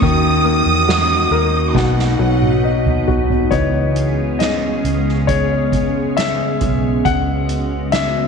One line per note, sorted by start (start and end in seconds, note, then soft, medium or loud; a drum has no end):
0.00 0.63 D#2 loud
0.00 1.71 D#3 medium
0.00 1.71 A#3 medium
0.00 3.49 D#4 medium
0.00 3.47 F#4 medium
0.00 1.76 D#6 loud
0.00 kick loud
0.00 ride medium
0.44 1.71 A#3 medium
0.44 ride medium
0.66 1.27 E2 medium
0.88 1.73 F#4 medium
0.88 snare loud
0.88 ride medium
1.31 1.72 D#2 medium
1.31 1.74 A#4 medium
1.31 ride medium
1.75 2.16 B1 medium
1.75 3.48 B2 medium
1.75 3.51 B3 medium
1.75 3.08 F#5 medium
1.75 kick medium
1.75 snare medium
1.99 snare medium
2.19 3.48 B1 medium
2.19 3.48 F#3 medium
2.42 high tom medium
2.64 3.49 D#4 medium
2.86 mid tom medium
3.08 3.50 F#4 medium
3.08 floor tom medium
3.30 floor tom loud
3.50 4.80 C#2 medium
3.50 8.28 C#3 medium
3.50 4.80 E3 soft
3.50 8.28 G#3 medium
3.50 4.80 B3 soft
3.50 8.28 B3 medium
3.50 8.28 C#4 medium
3.50 4.81 D#4 soft
3.50 7.03 G#4 medium
3.50 4.42 C#5 medium
3.50 kick medium
3.50 closed hi-hat medium
3.96 closed hi-hat medium
4.39 5.24 D#5 medium
4.39 snare loud
4.39 closed hi-hat medium
4.84 6.58 C#2 medium
4.84 closed hi-hat medium
5.09 snare soft
5.27 6.19 C#5 medium
5.27 kick medium
5.27 closed hi-hat medium
5.72 kick medium
5.72 closed hi-hat medium
6.17 7.01 E5 medium
6.17 snare medium
6.17 closed hi-hat medium
6.61 7.02 B1 medium
6.61 kick medium
6.61 closed hi-hat medium
7.05 8.28 C#2 medium
7.05 8.28 F#4 medium
7.05 7.89 F#5 medium
7.05 kick loud
7.05 closed hi-hat medium
7.49 closed hi-hat medium
7.92 8.28 E5 medium
7.92 snare loud
7.92 closed hi-hat medium